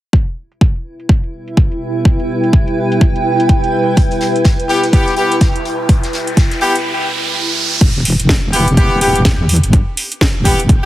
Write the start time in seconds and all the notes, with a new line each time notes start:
0.13 B3 E4 G4 E5, kick
0.52 B4, closed hi-hat
0.61 kick
0.76 closed hi-hat
0.81 G5
1.00 closed hi-hat
1.09 kick
1.24 closed hi-hat
1.48 closed hi-hat
1.57 kick, closed hi-hat
1.72 closed hi-hat
2.05 kick, closed hi-hat
2.20 closed hi-hat
2.44 closed hi-hat
2.53 kick, closed hi-hat
2.68 closed hi-hat
2.92 closed hi-hat
3.01 kick, closed hi-hat
3.16 closed hi-hat
3.40 closed hi-hat
3.49 kick, closed hi-hat
3.64 closed hi-hat
3.97 kick, closed hi-hat, riser
4.11 closed hi-hat
4.21 snare, closed hi-hat
4.36 closed hi-hat
4.45 kick, snare, closed hi-hat
4.60 closed hi-hat
4.69 B3 E4 G4, closed hi-hat
4.83 snare, closed hi-hat
4.93 B3 E4 G4, kick, closed hi-hat
5.08 snare, closed hi-hat
5.17 B3 E4 G4, closed hi-hat
5.32 closed hi-hat
5.41 kick, snare, closed hi-hat
5.56 closed hi-hat
5.65 closed hi-hat
5.89 kick, closed hi-hat
6.03 snare, closed hi-hat
6.13 snare, closed hi-hat
6.27 closed hi-hat
6.37 kick, snare, closed hi-hat
6.51 snare, closed hi-hat
6.61 B3 E4 G4, closed hi-hat
6.75 closed hi-hat
7.81 E1, kick, closed hi-hat, crash
8.05 open hi-hat
8.19 E1, closed hi-hat
8.29 kick, snare
8.44 E1
8.53 B3 E4 G4, open hi-hat
8.68 closed hi-hat
8.77 B3 E4 G4, kick, closed hi-hat
8.91 E1
9.01 B3 E4 G4, open hi-hat
9.16 closed hi-hat
9.25 E2, kick, snare, closed hi-hat
9.49 open hi-hat
9.56 closed hi-hat
9.63 G1, closed hi-hat
9.73 kick, closed hi-hat
9.97 open hi-hat
10.12 closed hi-hat
10.21 kick, snare
10.35 E1
10.45 B3 E4 G4, kick, open hi-hat
10.60 closed hi-hat
10.69 kick, closed hi-hat